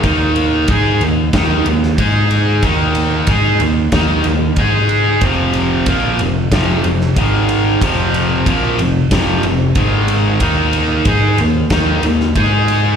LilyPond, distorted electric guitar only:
\new Staff \with { instrumentName = "Distorted electric guitar" } { \clef bass \time 4/4 \key ees \mixolydian \tempo 4 = 92 <ees bes ees'>4 <aes ees' aes'>8 <ees bes>8 <ees bes ees'>8 <ees bes>8 <aes ees' aes'>4 | <ees bes ees'>4 <aes ees' aes'>8 <ees bes>8 <ees bes ees'>8 <ees bes>8 <aes ees' aes'>4 | <f, c f>4 <bes, f bes>8 <f, c>8 <f, c f>8 <f, c>8 <aes, ees aes>4 | <f, c f>4 <bes, f bes>8 <f, c>8 <f, c f>8 <f, c>8 <aes, ees aes>4 |
<ees bes ees'>4 <aes ees' aes'>8 <ees bes>8 <ees bes ees'>8 <ees bes>8 <aes ees' aes'>4 | }